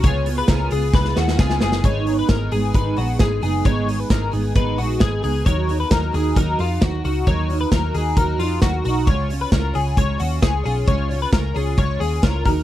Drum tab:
HH |x-o-x-o---------|x-o-x-o-x-o-x-o-|x-o-x-o-x-o-x-o-|x-o-x-o-x-o-x-o-|
SD |----o---oooooooo|----o-------o---|----o-------o---|----o-------o---|
BD |o---o---o---o---|o---o---o---o---|o---o---o---o---|o---o---o---o---|

HH |x-o-x-o-x-o-x-o-|x-o-x-o-x-o-x-o-|x-o-x-o-x-o-x-o-|
SD |----o-------o---|----o-------o---|----o-------o---|
BD |o---o---o---o---|o---o---o---o---|o---o---o---o-o-|